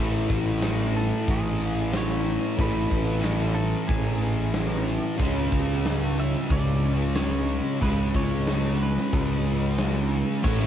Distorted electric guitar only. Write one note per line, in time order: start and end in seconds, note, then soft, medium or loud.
0.00 2.55 A2 medium
0.00 2.59 E3 loud
0.00 2.57 A3 loud
2.58 5.17 A2 medium
2.58 5.20 E3 loud
2.62 5.20 A3 loud
5.18 7.79 C#3 medium
5.18 7.80 G#3 medium
5.18 7.84 C#4 loud
7.81 10.41 C#3 loud
7.81 10.42 G#3 loud
7.81 10.43 C#4 loud
10.43 10.67 A2 medium
10.43 10.62 E3 loud
10.43 10.59 A3 loud
10.59 10.67 E3 medium
10.59 10.67 A3 medium